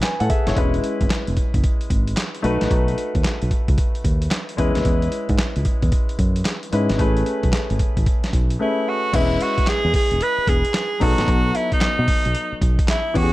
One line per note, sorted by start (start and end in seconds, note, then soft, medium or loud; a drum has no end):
0.00 0.52 A3 medium
0.00 0.52 C#4 medium
0.00 0.30 G#4 medium
0.00 0.04 B4 medium
0.00 0.20 B4 medium
0.00 0.19 G#5 medium
0.00 snare loud
0.00 clap medium
0.00 closed hi-hat medium
0.20 0.28 A2 medium
0.20 0.29 A4 medium
0.20 0.29 F#5 medium
0.20 closed hi-hat medium
0.30 0.46 G#4 medium
0.30 0.46 E5 medium
0.30 kick medium
0.30 closed hi-hat medium
0.47 0.55 F#1 medium
0.47 0.56 E4 medium
0.47 0.73 C#5 medium
0.47 snare medium
0.47 closed hi-hat medium
0.55 0.79 E1 loud
0.55 2.40 G#3 medium
0.55 2.40 C#4 medium
0.55 2.40 E4 medium
0.55 2.41 B4 medium
0.55 kick loud
0.55 closed hi-hat medium
0.74 closed hi-hat soft
0.84 closed hi-hat medium
1.01 1.09 G#1 loud
1.01 kick medium
1.01 closed hi-hat soft
1.10 snare loud
1.10 clap medium
1.10 closed hi-hat medium
1.27 1.36 E1 medium
1.27 closed hi-hat medium
1.37 kick medium
1.37 closed hi-hat medium
1.54 1.62 F#1 medium
1.54 kick loud
1.54 closed hi-hat medium
1.64 kick loud
1.64 closed hi-hat medium
1.81 closed hi-hat soft
1.90 2.13 G#1 medium
1.90 kick medium
1.90 closed hi-hat medium
2.07 closed hi-hat medium
2.17 snare loud
2.17 clap medium
2.17 closed hi-hat medium
2.35 closed hi-hat soft
2.42 2.59 B1 medium
2.42 4.53 A3 medium
2.42 4.54 D#4 medium
2.42 4.54 F#4 medium
2.42 4.55 B4 medium
2.42 closed hi-hat medium
2.61 2.70 A1 medium
2.61 snare medium
2.61 closed hi-hat medium
2.71 2.93 B1 loud
2.71 kick loud
2.71 closed hi-hat medium
2.88 closed hi-hat soft
2.98 closed hi-hat medium
3.15 3.23 D#2 medium
3.15 kick medium
3.15 closed hi-hat soft
3.24 muted fingered electric bass stroke medium
3.24 snare loud
3.24 clap medium
3.24 closed hi-hat medium
3.42 3.50 B1 medium
3.42 closed hi-hat soft
3.51 kick medium
3.51 closed hi-hat medium
3.68 3.76 C#2 medium
3.68 kick loud
3.68 closed hi-hat medium
3.78 kick loud
3.78 closed hi-hat medium
3.95 closed hi-hat soft
4.04 4.27 D#2 medium
4.04 kick medium
4.04 closed hi-hat medium
4.22 closed hi-hat medium
4.31 snare loud
4.31 clap medium
4.31 closed hi-hat medium
4.49 closed hi-hat medium
4.57 4.73 E2 medium
4.57 6.68 G#3 medium
4.57 6.68 C#4 medium
4.57 6.69 E4 medium
4.57 6.69 B4 medium
4.57 kick medium
4.57 closed hi-hat medium
4.75 4.84 D#2 medium
4.75 snare medium
4.75 closed hi-hat medium
4.85 5.08 E2 loud
4.85 kick loud
4.85 closed hi-hat medium
5.02 closed hi-hat soft
5.12 closed hi-hat medium
5.29 5.37 G#2 loud
5.29 kick medium
5.29 closed hi-hat soft
5.38 muted fingered electric bass stroke medium
5.38 snare loud
5.38 clap medium
5.38 closed hi-hat medium
5.56 5.64 C#2 medium
5.56 closed hi-hat medium
5.65 kick medium
5.65 closed hi-hat medium
5.82 5.91 E2 medium
5.82 kick loud
5.82 closed hi-hat medium
5.92 kick loud
5.92 closed hi-hat medium
6.09 closed hi-hat soft
6.19 6.42 F#2 medium
6.19 kick medium
6.19 closed hi-hat medium
6.36 closed hi-hat medium
6.45 snare loud
6.45 clap medium
6.45 closed hi-hat medium
6.63 closed hi-hat medium
6.72 6.87 G#2 medium
6.72 6.99 G#3 medium
6.72 6.98 C#4 medium
6.72 6.99 E4 soft
6.72 6.99 B4 medium
6.72 closed hi-hat medium
6.89 6.98 G#1 medium
6.89 snare medium
6.89 closed hi-hat medium
6.98 7.22 A1 loud
6.98 8.56 A3 medium
6.98 8.57 C#4 medium
6.98 8.57 G#4 medium
6.98 8.57 B4 medium
6.98 kick loud
6.98 closed hi-hat medium
7.17 closed hi-hat soft
7.26 closed hi-hat medium
7.43 7.52 B1 medium
7.43 kick medium
7.43 closed hi-hat soft
7.53 muted fingered electric bass stroke soft
7.53 snare loud
7.53 clap medium
7.53 closed hi-hat medium
7.70 7.78 G#1 medium
7.70 closed hi-hat medium
7.79 kick medium
7.79 closed hi-hat medium
7.97 8.05 A1 medium
7.97 kick medium
7.97 closed hi-hat medium
8.06 kick loud
8.06 closed hi-hat medium
8.24 snare medium
8.24 closed hi-hat soft
8.33 8.56 B1 medium
8.33 kick medium
8.33 closed hi-hat medium
8.50 closed hi-hat medium
8.59 9.13 A3 medium
8.59 9.12 C#4 soft
8.59 8.90 E4 medium
8.59 9.14 G#4 soft
8.59 9.13 B4 medium
8.88 9.16 F#4 medium
9.13 9.36 E1 loud
9.13 10.97 G#3 medium
9.13 10.97 C#4 medium
9.13 10.98 E4 medium
9.13 9.43 E4 loud
9.13 10.98 B4 medium
9.13 kick loud
9.13 closed hi-hat medium
9.13 crash medium
9.41 9.70 F#4 medium
9.41 closed hi-hat medium
9.58 muted fingered electric bass stroke soft
9.58 kick medium
9.58 closed hi-hat soft
9.67 9.95 G#4 loud
9.67 muted fingered electric bass stroke soft
9.67 snare loud
9.67 clap medium
9.67 closed hi-hat medium
9.85 9.93 E2 loud
9.94 10.23 G#4 loud
9.94 kick medium
9.94 open hi-hat medium
10.11 10.19 E1 medium
10.11 closed hi-hat medium
10.21 10.50 B4 loud
10.21 closed hi-hat medium
10.38 muted fingered electric bass stroke soft
10.47 10.62 E1 medium
10.47 11.04 G#4 loud
10.47 kick medium
10.47 closed hi-hat medium
10.65 closed hi-hat medium
10.74 snare loud
10.74 clap medium
10.74 closed hi-hat medium
11.00 11.16 B1 medium
11.00 13.11 F#3 medium
11.00 13.11 B3 medium
11.00 13.11 D#4 medium
11.00 11.57 F#4 loud
11.00 13.12 A4 medium
11.00 kick medium
11.00 open hi-hat medium
11.18 11.26 A1 medium
11.18 snare medium
11.18 closed hi-hat medium
11.28 11.51 B1 loud
11.28 kick loud
11.28 closed hi-hat medium
11.55 11.72 E4 medium
11.55 closed hi-hat medium
11.72 12.58 D#4 medium
11.72 muted fingered electric bass stroke soft
11.72 kick medium
11.72 closed hi-hat soft
11.81 muted fingered electric bass stroke medium
11.81 snare loud
11.81 clap medium
11.81 closed hi-hat medium
11.99 12.07 B2 medium
12.08 kick medium
12.08 open hi-hat medium
12.25 12.34 B1 medium
12.25 closed hi-hat medium
12.35 closed hi-hat medium
12.52 muted fingered electric bass stroke soft
12.62 12.76 B1 medium
12.62 kick medium
12.62 closed hi-hat medium
12.79 kick loud
12.79 closed hi-hat medium
12.88 13.18 E4 medium
12.88 snare loud
12.88 clap medium
12.88 closed hi-hat medium
13.14 13.30 E2 medium
13.14 13.33 E3 medium
13.14 13.33 B3 medium
13.14 13.33 C#4 medium
13.14 13.33 F#4 loud
13.14 13.24 G4 medium
13.14 kick loud
13.14 open hi-hat medium
13.23 13.33 G#4 medium